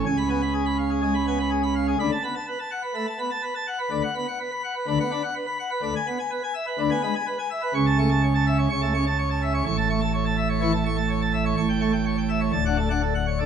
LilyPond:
<<
  \new Staff \with { instrumentName = "Pipe organ" } { \time 4/4 \key a \major \tempo 4 = 125 gis''16 b''16 gis''16 b''16 gis'16 b''16 eis''16 gis'16 gis''16 b''16 gis''16 b''16 gis'16 b''16 eis''16 gis'16 | b''16 a''16 b''16 a''16 b'16 a''16 fis''16 b'16 b''16 a''16 b''16 a''16 b'16 a''16 fis''16 b'16 | b''16 fis''16 b''16 fis''16 b'16 b''16 fis''16 b'16 b''16 fis''16 b''16 fis''16 b'16 b''16 fis''16 b'16 | b''16 gis''16 b''16 gis''16 b'16 gis''16 e''16 b'16 b''16 gis''16 b''16 gis''16 b'16 gis''16 e''16 b'16 |
cis'''16 a''16 cis'''16 a''16 cis''16 a''16 e''16 cis''16 cis'''16 a''16 cis'''16 a''16 cis''16 a''16 e''16 cis''16 | cis'''16 a''16 cis'''16 a''16 cis''16 a''16 e''16 cis''16 cis'''16 a''16 cis'''16 a''16 cis''16 a''16 e''16 cis''16 | cis'''16 g''16 cis'''16 g''16 cis''16 g''16 e''16 cis''16 a''16 fis''16 a''16 fis''16 a'16 fis''16 cis''16 a'16 | }
  \new Staff \with { instrumentName = "Pipe organ" } { \clef bass \time 4/4 \key a \major << { cis8 b16 r4 r16 gis16 r16 b16 r4 r16 | d16 r16 b16 r4 r16 a16 r16 b16 r4 r16 | d16 r16 b16 r4 r16 d16 b16 d'16 r4 r16 | d16 r16 b16 r4 r16 d16 b16 gis16 r4 r16 |
cis8 a16 r4 r16 cis16 a16 cis'16 r4 r16 | a,8 a16 r4 r16 e16 r16 a16 r4 r16 | a,8 a16 r4 r16 d,16 d'16 a16 d'16 r8. d'16 | } \\ { cis,1 | d,16 r2. r8. | d,16 r4. r16 d,16 r4. r16 | d,16 r4. r16 d,16 r4. r16 |
cis,2 cis,2 | a,,1 | a,,2 d,,2 | } >> }
>>